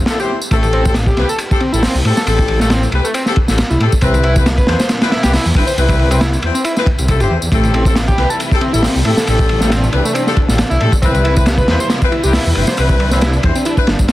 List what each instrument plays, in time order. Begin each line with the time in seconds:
0.06 horn section C4 E4 A4, snare, ride, tambourine
0.20 horn section C4 E4 C5, analog synth lead G4, tambourine
0.42 tambourine
0.51 detuned saw bass A1, analog synth lead A3, horn section C4 G4 A4, kick, ride, tambourine
0.63 ride, tambourine
0.73 analog synth lead C4, ride
0.85 horn section C4 G4 A4, kick, tambourine
0.94 snare, ride, tambourine
1.06 analog synth lead G4, kick, tambourine
1.17 detuned saw bass C2, horn section C4 G4 B4, snare, ride
1.29 analog synth lead A4, tambourine
1.39 ride, tambourine
1.51 horn section C4 G4 A4, kick, tambourine
1.60 analog synth lead C4, ride
1.73 detuned saw bass A1, horn section C4 G4 A4, analog synth lead E4, tambourine
1.83 analog synth lead C4, snare, open hi-hat, tambourine
1.95 detuned saw bass C2, tambourine
2.05 detuned saw bass A2, horn section C4 G4 A4, ride
2.17 analog synth lead A4, snare, tambourine
2.26 detuned saw bass A1, horn section C4 G4 A4, ride, tambourine
2.39 kick, tambourine
2.48 ride
2.60 analog synth lead A3, horn section C4 G4 A4, snare, tambourine
2.70 analog synth lead C4, snare, ride, tambourine
2.83 tambourine
2.92 detuned saw bass C2, horn section C4 G4 B4, ride
3.04 analog synth lead A3, tambourine
3.14 analog synth lead C4, ride, tambourine
3.26 horn section C4 G4 A4, snare, tambourine
3.36 kick, ride
3.48 detuned saw bass A1, horn section C4 G4 A4, snare, tambourine
3.58 snare, ride, tambourine
3.70 detuned saw bass C2, analog synth lead E4, tambourine
3.80 detuned saw bass A2, horn section C4 G4 A4, ride
3.92 kick, tambourine
4.01 detuned saw bass C2, analog synth lead C4, horn section C4 E4 B4, kick, ride, tambourine
4.14 ride, tambourine
4.23 analog synth lead E4, ride
4.36 horn section C4 E4 B4, kick, tambourine
4.46 snare, ride, tambourine
4.58 analog synth lead B4, kick, tambourine
4.67 detuned saw bass E2, horn section C4 E4 C5, snare, ride
4.80 analog synth lead C5, snare, ride, tambourine
4.89 snare, ride, tambourine
5.02 horn section C4 E4 B4, snare, ride, tambourine
5.11 analog synth lead E4, snare, ride
5.23 detuned saw bass C2, horn section C4 E4 B4, analog synth lead G4, snare, ride, tambourine
5.33 analog synth lead E4, snare, open hi-hat, tambourine
5.45 detuned saw bass E2, tambourine
5.55 detuned saw bass G1, horn section C4 E4 B4, kick, ride
5.67 analog synth lead C5, ride, tambourine
5.77 detuned saw bass C2, horn section C4 E4 B4, ride, tambourine
5.89 kick, ride, tambourine
5.99 ride
6.11 analog synth lead C4, horn section C4 E4 B4, ride, tambourine
6.21 analog synth lead E4, snare, ride, tambourine
6.33 tambourine
6.42 detuned saw bass E2, horn section C4 E4 C5, ride
6.54 analog synth lead C4, tambourine
6.65 analog synth lead E4, ride, tambourine
6.77 horn section C4 E4 B4, snare, tambourine
6.86 kick, ride
6.99 detuned saw bass C2, ride, tambourine
7.08 horn section C4 E4 A4, kick, ride, tambourine
7.20 detuned saw bass G1, horn section C4 E4 C5, analog synth lead G4, ride, tambourine
7.31 detuned saw bass E2
7.42 detuned saw bass E2, tambourine
7.52 detuned saw bass A1, string section C3 E3 G3 A3 E4, analog synth lead A3, horn section C4 G4 A4, kick, ride
7.63 ride, tambourine
7.74 analog synth lead C4, ride
7.85 horn section C4 G4 A4, kick, tambourine
7.96 snare, ride, tambourine
8.08 analog synth lead G4, kick, tambourine
8.18 detuned saw bass C2, horn section C4 G4 B4, snare, ride
8.30 analog synth lead A4, tambourine
8.40 ride, tambourine
8.51 horn section C4 G4 A4, kick, tambourine
8.61 analog synth lead C4, ride
8.73 detuned saw bass A1, horn section C4 G4 A4, analog synth lead E4, tambourine
8.83 analog synth lead C4, snare, open hi-hat, tambourine
8.95 detuned saw bass C2, tambourine
9.05 detuned saw bass A2, horn section C4 G4 A4, ride
9.17 analog synth lead A4, snare, tambourine
9.27 detuned saw bass A1, horn section C4 G4 A4, string section D4, ride, tambourine
9.39 kick, tambourine
9.49 ride
9.61 analog synth lead A3, horn section C4 G4 A4, snare, tambourine
9.70 analog synth lead C4, snare, ride, tambourine
9.84 tambourine
9.93 detuned saw bass C2, horn section C4 G4 B4, ride
10.05 analog synth lead A3, tambourine
10.14 analog synth lead C4, ride, tambourine
10.27 horn section C4 G4 A4, snare, tambourine
10.37 kick, ride
10.48 detuned saw bass A1, horn section C4 G4 A4, snare, tambourine
10.58 snare, ride, tambourine
10.70 detuned saw bass C2, analog synth lead E4, tambourine
10.81 detuned saw bass A2, horn section C4 G4 A4, ride
10.92 kick, tambourine
11.02 detuned saw bass C2, analog synth lead C4, horn section C4 E4 B4, string section E4 B4, kick, ride, tambourine
11.14 ride, tambourine
11.24 analog synth lead E4, ride
11.36 horn section C4 E4 B4, kick, tambourine
11.46 snare, ride, tambourine
11.58 analog synth lead B4, kick, tambourine
11.68 detuned saw bass E2, horn section C4 E4 C5, snare, ride
11.80 analog synth lead C5, tambourine
11.90 snare, ride, tambourine
12.02 horn section C4 E4 B4, kick, tambourine
12.12 analog synth lead E4, ride
12.24 detuned saw bass C2, horn section C4 E4 B4, analog synth lead G4, tambourine
12.33 analog synth lead E4, snare, open hi-hat, tambourine
12.45 detuned saw bass E2, tambourine
12.55 detuned saw bass G1, horn section C4 E4 B4, ride
12.67 analog synth lead C5, snare, tambourine
12.77 detuned saw bass C2, horn section C4 E4 B4, string section D4, ride, tambourine
12.89 kick, tambourine
13.00 ride
13.11 horn section C4 E4 B4, analog synth lead C4, snare, tambourine
13.21 analog synth lead E4, snare, ride, tambourine
13.33 tambourine
13.43 detuned saw bass E2, horn section C4 E4 C5, kick, ride
13.55 analog synth lead C4, ride, tambourine
13.65 analog synth lead E4, ride, tambourine
13.77 horn section C4 E4 B4, kick, tambourine
13.87 detuned saw bass G1, snare, ride
13.99 detuned saw bass G1, kick, tambourine
14.08 snare, ride